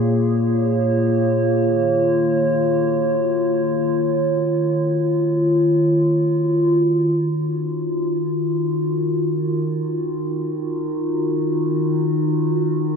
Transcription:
0, 0, Header, 1, 2, 480
1, 0, Start_track
1, 0, Key_signature, -6, "minor"
1, 0, Tempo, 500000
1, 12444, End_track
2, 0, Start_track
2, 0, Title_t, "Ambient pad"
2, 0, Program_c, 0, 92
2, 0, Note_on_c, 0, 46, 75
2, 0, Note_on_c, 0, 58, 71
2, 0, Note_on_c, 0, 65, 86
2, 0, Note_on_c, 0, 68, 76
2, 0, Note_on_c, 0, 73, 88
2, 1492, Note_on_c, 0, 51, 84
2, 1505, Note_off_c, 0, 46, 0
2, 2208, Note_on_c, 0, 66, 80
2, 3284, Note_off_c, 0, 68, 0
2, 6680, Note_on_c, 0, 63, 73
2, 7790, Note_off_c, 0, 58, 0
2, 7993, Note_on_c, 0, 70, 65
2, 8461, Note_off_c, 0, 73, 0
2, 12444, Note_off_c, 0, 51, 0
2, 12444, Note_off_c, 0, 63, 0
2, 12444, Note_off_c, 0, 65, 0
2, 12444, Note_off_c, 0, 66, 0
2, 12444, Note_off_c, 0, 70, 0
2, 12444, End_track
0, 0, End_of_file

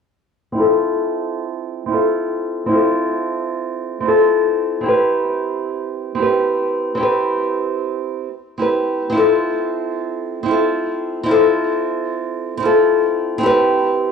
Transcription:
0, 0, Header, 1, 2, 480
1, 0, Start_track
1, 0, Tempo, 535714
1, 504, Time_signature, 4, 2, 24, 8
1, 12651, End_track
2, 0, Start_track
2, 0, Title_t, "Nylon-string guitar"
2, 0, Program_c, 0, 24
2, 467, Note_on_c, 0, 60, 89
2, 491, Note_on_c, 0, 64, 79
2, 513, Note_on_c, 0, 65, 74
2, 536, Note_on_c, 0, 69, 98
2, 1655, Note_off_c, 0, 60, 0
2, 1666, Note_on_c, 0, 60, 71
2, 1671, Note_off_c, 0, 64, 0
2, 1682, Note_off_c, 0, 65, 0
2, 1688, Note_on_c, 0, 64, 64
2, 1693, Note_off_c, 0, 69, 0
2, 1714, Note_on_c, 0, 65, 66
2, 1737, Note_on_c, 0, 69, 79
2, 2373, Note_off_c, 0, 60, 0
2, 2384, Note_on_c, 0, 60, 88
2, 2390, Note_off_c, 0, 64, 0
2, 2402, Note_off_c, 0, 65, 0
2, 2408, Note_on_c, 0, 64, 80
2, 2414, Note_off_c, 0, 69, 0
2, 2432, Note_on_c, 0, 65, 79
2, 2453, Note_on_c, 0, 69, 96
2, 3578, Note_off_c, 0, 60, 0
2, 3588, Note_on_c, 0, 60, 74
2, 3590, Note_off_c, 0, 64, 0
2, 3602, Note_off_c, 0, 65, 0
2, 3608, Note_on_c, 0, 64, 67
2, 3612, Note_off_c, 0, 69, 0
2, 3633, Note_on_c, 0, 65, 69
2, 3656, Note_on_c, 0, 69, 85
2, 4297, Note_off_c, 0, 60, 0
2, 4308, Note_on_c, 0, 60, 86
2, 4310, Note_off_c, 0, 64, 0
2, 4322, Note_off_c, 0, 65, 0
2, 4330, Note_on_c, 0, 64, 82
2, 4334, Note_off_c, 0, 69, 0
2, 4353, Note_on_c, 0, 67, 85
2, 4377, Note_on_c, 0, 71, 96
2, 5499, Note_off_c, 0, 60, 0
2, 5509, Note_on_c, 0, 60, 79
2, 5511, Note_off_c, 0, 64, 0
2, 5522, Note_off_c, 0, 67, 0
2, 5531, Note_on_c, 0, 64, 69
2, 5534, Note_off_c, 0, 71, 0
2, 5554, Note_on_c, 0, 67, 70
2, 5577, Note_on_c, 0, 71, 85
2, 6215, Note_off_c, 0, 60, 0
2, 6226, Note_on_c, 0, 60, 91
2, 6231, Note_off_c, 0, 64, 0
2, 6242, Note_off_c, 0, 67, 0
2, 6248, Note_on_c, 0, 64, 86
2, 6254, Note_off_c, 0, 71, 0
2, 6272, Note_on_c, 0, 67, 82
2, 6294, Note_on_c, 0, 71, 93
2, 7419, Note_off_c, 0, 60, 0
2, 7429, Note_off_c, 0, 64, 0
2, 7442, Note_off_c, 0, 67, 0
2, 7453, Note_off_c, 0, 71, 0
2, 7685, Note_on_c, 0, 60, 65
2, 7698, Note_on_c, 0, 64, 63
2, 7709, Note_on_c, 0, 67, 60
2, 7721, Note_on_c, 0, 71, 81
2, 8140, Note_off_c, 0, 60, 0
2, 8150, Note_on_c, 0, 60, 92
2, 8154, Note_off_c, 0, 64, 0
2, 8160, Note_off_c, 0, 67, 0
2, 8166, Note_off_c, 0, 71, 0
2, 8174, Note_on_c, 0, 64, 84
2, 8197, Note_on_c, 0, 65, 80
2, 8219, Note_on_c, 0, 69, 96
2, 9334, Note_off_c, 0, 60, 0
2, 9345, Note_on_c, 0, 60, 76
2, 9353, Note_off_c, 0, 64, 0
2, 9364, Note_off_c, 0, 65, 0
2, 9370, Note_on_c, 0, 64, 73
2, 9375, Note_off_c, 0, 69, 0
2, 9390, Note_on_c, 0, 65, 72
2, 9415, Note_on_c, 0, 69, 81
2, 10055, Note_off_c, 0, 60, 0
2, 10066, Note_on_c, 0, 60, 87
2, 10071, Note_off_c, 0, 64, 0
2, 10081, Note_off_c, 0, 65, 0
2, 10088, Note_on_c, 0, 64, 85
2, 10093, Note_off_c, 0, 69, 0
2, 10112, Note_on_c, 0, 65, 82
2, 10135, Note_on_c, 0, 69, 104
2, 11256, Note_off_c, 0, 60, 0
2, 11266, Note_on_c, 0, 60, 81
2, 11270, Note_off_c, 0, 64, 0
2, 11281, Note_off_c, 0, 65, 0
2, 11292, Note_on_c, 0, 64, 67
2, 11293, Note_off_c, 0, 69, 0
2, 11313, Note_on_c, 0, 65, 74
2, 11337, Note_on_c, 0, 69, 82
2, 11979, Note_off_c, 0, 60, 0
2, 11989, Note_on_c, 0, 60, 96
2, 11991, Note_off_c, 0, 64, 0
2, 12002, Note_off_c, 0, 65, 0
2, 12013, Note_on_c, 0, 64, 80
2, 12014, Note_off_c, 0, 69, 0
2, 12036, Note_on_c, 0, 67, 88
2, 12059, Note_on_c, 0, 71, 102
2, 12651, Note_off_c, 0, 60, 0
2, 12651, Note_off_c, 0, 64, 0
2, 12651, Note_off_c, 0, 67, 0
2, 12651, Note_off_c, 0, 71, 0
2, 12651, End_track
0, 0, End_of_file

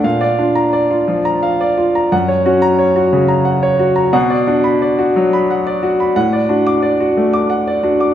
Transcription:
0, 0, Header, 1, 2, 480
1, 0, Start_track
1, 0, Tempo, 694444
1, 30, Time_signature, 3, 2, 24, 8
1, 1470, Tempo, 673401
1, 5757, End_track
2, 0, Start_track
2, 0, Title_t, "Grand piano"
2, 0, Program_c, 0, 0
2, 0, Control_c, 0, 64, 127
2, 27, Note_on_c, 0, 46, 61
2, 29, Note_on_c, 0, 77, 67
2, 43, Control_c, 0, 64, 0
2, 144, Note_on_c, 0, 74, 65
2, 147, Control_c, 0, 64, 127
2, 220, Note_off_c, 0, 77, 0
2, 267, Note_on_c, 0, 62, 55
2, 268, Note_on_c, 0, 65, 51
2, 339, Note_off_c, 0, 74, 0
2, 383, Note_on_c, 0, 82, 64
2, 462, Note_off_c, 0, 65, 0
2, 504, Note_on_c, 0, 74, 61
2, 580, Note_off_c, 0, 82, 0
2, 626, Note_on_c, 0, 65, 57
2, 655, Note_off_c, 0, 62, 0
2, 701, Note_off_c, 0, 74, 0
2, 744, Note_on_c, 0, 53, 65
2, 822, Note_off_c, 0, 65, 0
2, 865, Note_on_c, 0, 82, 63
2, 940, Note_off_c, 0, 53, 0
2, 986, Note_on_c, 0, 77, 59
2, 1059, Note_off_c, 0, 82, 0
2, 1111, Note_on_c, 0, 74, 62
2, 1180, Note_off_c, 0, 77, 0
2, 1227, Note_on_c, 0, 65, 59
2, 1302, Note_off_c, 0, 74, 0
2, 1350, Note_on_c, 0, 82, 57
2, 1420, Note_off_c, 0, 65, 0
2, 1441, Note_off_c, 0, 46, 0
2, 1465, Note_on_c, 0, 42, 69
2, 1467, Note_on_c, 0, 78, 66
2, 1470, Note_off_c, 0, 82, 0
2, 1481, Control_c, 0, 64, 0
2, 1581, Note_on_c, 0, 73, 57
2, 1587, Control_c, 0, 64, 127
2, 1664, Note_off_c, 0, 78, 0
2, 1704, Note_on_c, 0, 61, 60
2, 1706, Note_on_c, 0, 66, 67
2, 1780, Note_off_c, 0, 73, 0
2, 1821, Note_on_c, 0, 82, 75
2, 1902, Note_off_c, 0, 66, 0
2, 1941, Note_on_c, 0, 73, 57
2, 2019, Note_off_c, 0, 82, 0
2, 2063, Note_on_c, 0, 66, 62
2, 2092, Note_off_c, 0, 61, 0
2, 2138, Note_off_c, 0, 73, 0
2, 2182, Note_on_c, 0, 49, 61
2, 2258, Note_off_c, 0, 66, 0
2, 2295, Note_on_c, 0, 82, 60
2, 2378, Note_off_c, 0, 49, 0
2, 2414, Note_on_c, 0, 78, 58
2, 2494, Note_off_c, 0, 82, 0
2, 2539, Note_on_c, 0, 73, 64
2, 2614, Note_off_c, 0, 78, 0
2, 2659, Note_on_c, 0, 66, 60
2, 2738, Note_off_c, 0, 73, 0
2, 2775, Note_on_c, 0, 82, 58
2, 2858, Note_off_c, 0, 66, 0
2, 2881, Note_off_c, 0, 42, 0
2, 2897, Note_on_c, 0, 47, 75
2, 2898, Note_on_c, 0, 78, 69
2, 2904, Note_off_c, 0, 82, 0
2, 2923, Control_c, 0, 64, 0
2, 3020, Note_on_c, 0, 74, 63
2, 3034, Control_c, 0, 64, 127
2, 3098, Note_off_c, 0, 78, 0
2, 3142, Note_on_c, 0, 62, 58
2, 3142, Note_on_c, 0, 66, 58
2, 3220, Note_off_c, 0, 74, 0
2, 3261, Note_on_c, 0, 83, 65
2, 3342, Note_off_c, 0, 66, 0
2, 3388, Note_on_c, 0, 74, 59
2, 3463, Note_off_c, 0, 83, 0
2, 3508, Note_on_c, 0, 66, 60
2, 3537, Note_off_c, 0, 62, 0
2, 3587, Note_off_c, 0, 74, 0
2, 3632, Note_on_c, 0, 54, 71
2, 3706, Note_off_c, 0, 66, 0
2, 3755, Note_on_c, 0, 83, 62
2, 3826, Note_off_c, 0, 54, 0
2, 3877, Note_on_c, 0, 78, 56
2, 3944, Note_off_c, 0, 83, 0
2, 3993, Note_on_c, 0, 74, 62
2, 4062, Note_off_c, 0, 78, 0
2, 4109, Note_on_c, 0, 66, 60
2, 4179, Note_off_c, 0, 74, 0
2, 4232, Note_on_c, 0, 83, 56
2, 4296, Note_off_c, 0, 66, 0
2, 4307, Note_off_c, 0, 47, 0
2, 4345, Note_on_c, 0, 78, 74
2, 4346, Note_on_c, 0, 45, 67
2, 4347, Note_off_c, 0, 83, 0
2, 4355, Control_c, 0, 64, 0
2, 4464, Note_on_c, 0, 74, 61
2, 4490, Control_c, 0, 64, 127
2, 4535, Note_off_c, 0, 78, 0
2, 4581, Note_on_c, 0, 62, 56
2, 4584, Note_on_c, 0, 66, 54
2, 4655, Note_off_c, 0, 74, 0
2, 4705, Note_on_c, 0, 86, 66
2, 4775, Note_off_c, 0, 66, 0
2, 4818, Note_on_c, 0, 74, 59
2, 4897, Note_off_c, 0, 86, 0
2, 4947, Note_on_c, 0, 66, 59
2, 4967, Note_off_c, 0, 62, 0
2, 5014, Note_off_c, 0, 74, 0
2, 5066, Note_on_c, 0, 57, 56
2, 5139, Note_off_c, 0, 66, 0
2, 5182, Note_on_c, 0, 86, 62
2, 5259, Note_off_c, 0, 57, 0
2, 5298, Note_on_c, 0, 78, 59
2, 5378, Note_off_c, 0, 86, 0
2, 5425, Note_on_c, 0, 74, 59
2, 5496, Note_off_c, 0, 78, 0
2, 5538, Note_on_c, 0, 62, 54
2, 5538, Note_on_c, 0, 66, 51
2, 5620, Note_off_c, 0, 74, 0
2, 5659, Note_on_c, 0, 86, 57
2, 5738, Note_off_c, 0, 66, 0
2, 5757, Note_off_c, 0, 45, 0
2, 5757, Note_off_c, 0, 62, 0
2, 5757, Note_off_c, 0, 86, 0
2, 5757, End_track
0, 0, End_of_file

